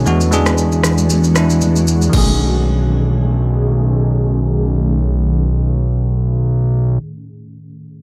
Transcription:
0.06 E2 E3 G#3 D4 F#4, low conga, shaker
0.21 high conga, shaker
0.31 E3 G#3 D4 G#4, shaker
0.46 cross-stick, shaker
0.58 shaker
0.72 shaker
0.83 cross-stick, low conga, shaker
0.98 high conga, shaker
1.10 low conga, shaker
1.24 shaker
1.35 E3 G#3 D4 E4, cross-stick, high conga, shaker
1.50 shaker
1.61 high conga, low conga, shaker
1.76 shaker
1.87 shaker
2.01 high conga, shaker
2.09 B1 D#3 A3 C#4 G#4, kick, crash, high conga
2.15 C#4 G#4

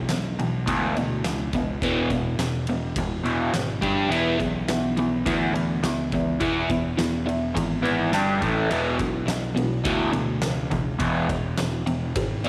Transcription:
0.09 B1 E2 B2, snare, ride
0.39 E2 B2, ride
0.66 D2 E2 B2 E3, kick, ride
0.97 E2 B2, ride
1.24 C#2 E2 B2, snare, ride
1.53 E2 B2, kick, ride
1.82 E1 E2 B2 E3, kick, ride
2.10 E2 B2, kick, ride
2.37 E1 E2 B2, snare, ride
2.67 E2 B2, ride
2.96 E1 E2 B2, kick, ride
3.24 E2 B2 E3, ride
3.53 G#1 E2 B2, snare, ride
3.81 G1 G3 D4 G4, kick, ride
4.08 E1 E3 B3 E4, ride
4.39 B1 E3 B3, kick, ride
4.68 B1 E3 B3, snare, ride
4.97 E3 B3, ride
5.26 D2 E3 B3 E4, kick, ride
5.54 E3 B3, ride
5.83 C#2 E3 B3, snare, ride
6.12 E3 B3, kick, ride
6.40 E1 E3 B3 E4, kick, ride
6.70 E3 B3, kick, ride
6.97 E1 E3 B3, snare, ride
7.26 E3 B3, ride
7.55 G#1 E3 B3, kick, ride
7.83 E3 B3 E4, ride
8.12 G1 G3 D4 G4, snare, ride
8.42 A1 A2 E3 A3, kick, ride
8.70 E1 E2 B2 E3, ride
8.99 B1 E2 B2, kick, ride
9.26 B1 E2 B2, snare, ride
9.55 E2 B2, ride
9.84 D2 E2 B2 E3, kick, ride
10.13 E2 B2, ride
10.42 C#2 E2 B2, snare, ride
10.70 E2 B2, kick, ride
10.99 E1 E2 B2 E3, kick, ride
11.29 E2 B2, kick, ride
11.58 E1 E2 B2, snare, ride
11.86 E2 B2, ride
12.15 G#1 E2 B2, kick, ride
12.44 E2 B2 E3, ride

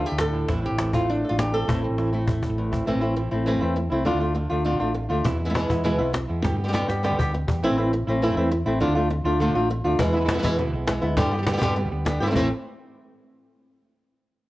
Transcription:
Already playing: D3 D4 A4
0.04 A3 E4 G4
0.12 D2
0.19 A2 A4, muted nylon-string guitar stroke, cajon slap
0.34 A3 D4 E4
0.48 A1 A2 E3 A3 C4 E4, cajon bass, cajon slap
0.62 A3 C4 E4 G4
0.71 A1
0.77 E3 A3 C4 E4, cajon slap
0.93 A3 C4 E4 F4, cajon bass
1.09 D4, muted nylon-string guitar stroke
1.24 A4
1.29 A1 F4
1.38 E2 G4, cajon slap
1.53 A3 C4 E4 A4
1.67 A1 A2 E3 A3 C4 E4, cajon bass
1.83 A3 C4 E4
1.90 A1
1.98 E3 A3 C4 E4, cajon slap
2.12 A3 C4 E4
2.27 E4, muted nylon-string guitar stroke, cajon bass
2.43 E4, cajon bass
2.50 A1
2.58 E2
2.71 A3 C4 E4, cajon bass
2.86 A1 E3 A3 C4 E4
2.95 A1
3.01 A3 C4 E4
3.16 E3 A3 C4 E4, muted nylon-string guitar stroke
3.31 A1 A3 C4 E4
3.46 E3 A3 C4 E4, muted nylon-string guitar stroke
3.54 G1
3.61 E2 A3 C4 E4
3.76 muted nylon-string guitar stroke
3.90 C2 A3 C4 E4
4.05 D2 D3 A3 D4 F4
4.13 D2
4.20 A3 D4 F4
4.34 D3 A3 D4 F4, muted nylon-string guitar stroke
4.51 D2 A3 D4 F4
4.64 D3 A3 D4 F4, muted nylon-string guitar stroke
4.73 C2
4.80 A1 A3 D4 F4
4.95 muted nylon-string guitar stroke
5.09 D2 A3 D4 F4
5.25 E2 B2 E3 G#3 B3 E4, muted nylon-string guitar stroke, cajon bass
5.32 E2
5.40 G#3 B3 E4
5.45 E3 B3 E4
5.50 E3 G#3 B3 E4
5.54 B2 E3 G#3 B3 E4, muted nylon-string guitar stroke, cajon slap
5.69 E2 G#3 B3 E4, cajon bass
5.84 B2 E3 G#3 B3 E4
5.92 D2
5.98 B1 G#3 B3 E4
6.13 muted nylon-string guitar stroke, cajon slap
6.28 E2 G#3 B3 E4
6.43 G2 B2 D3 G3 B3 G4, muted nylon-string guitar stroke, cajon bass, cajon slap
6.52 G2
6.58 G3 B3 G4
6.64 D3 B3 G4
6.68 D3 G3 B3 G4
6.73 B2 D3 G3 B3 G4, muted nylon-string guitar stroke, cajon slap
6.89 G2 G3 B3 G4, cajon slap
7.04 B2 D3 G3 B3 G4, cajon slap
7.11 E2
7.18 D2 G3 B3 G4, cajon bass
7.33 muted nylon-string guitar stroke
7.48 E2 G3 B3 G4, cajon bass
7.63 A1 E3 A3 C4 E4
7.71 A1
7.78 A3 C4 E4
7.92 muted nylon-string guitar stroke
8.07 A1 A3 C4 E4
8.21 E3 A3 C4 E4
8.29 G1
8.36 E2 A3 C4 E4
8.51 muted nylon-string guitar stroke
8.66 A1 A3 C4 E4
8.80 D2 D3 A3 D4 F4
8.88 D2
8.95 A3 D4 F4
9.10 muted nylon-string guitar stroke
9.24 D2 A3 D4 F4
9.39 D3 A3 D4 F4
9.47 C2
9.54 A1 A3 D4 F4
9.70 muted nylon-string guitar stroke
9.84 D2 A3 D4 F4
9.99 E2 B2 E3 G#3 B3 E4, muted nylon-string guitar stroke, cajon bass
10.06 E2
10.14 E3 G#3 B3 E4, cajon slap
10.20 E3 G#3 B3 E4
10.25 E3 G#3 B3 E4, cajon slap
10.29 B2 E3 G#3 B3 E4
10.34 E3 G#3 B3 E4
10.38 E3 G#3 B3 E4
10.43 E2 B2 E3 G#3 B3 E4, cajon bass
10.58 B2 E3 G#3 B3 E4, muted nylon-string guitar stroke
10.65 D2
10.73 B1 G#3 B3 E4
10.87 E3 G#3 B3 E4, muted nylon-string guitar stroke, cajon slap
11.02 D2 G#3 B3 E4
11.17 G2 B2 D3 G3 B3 G4, muted nylon-string guitar stroke, cajon bass
11.25 G2
11.33 D3 G3 B3 G4
11.37 D3 G3 B3 G4
11.42 D3 G3 B3 G4
11.46 B2 D3 G3 B3 G4, cajon slap
11.52 D3 G3 B3 G4
11.57 D3 G3 B3 G4
11.61 G2 B2 D3 G3 B3 G4, cajon bass
11.75 B2 D3 G3 B3 G4, muted nylon-string guitar stroke
11.84 E2
11.91 D2 G3 B3 G4
12.05 D3 G3 B3 G4, muted nylon-string guitar stroke, cajon slap
12.20 G2 E3 G3 A3 B3 C4 E4 G4
12.27 E3 A3 C4 E4
12.31 E3 A3 C4 E4, cajon bass
12.36 A1 A2 E3 A3 C4 E4

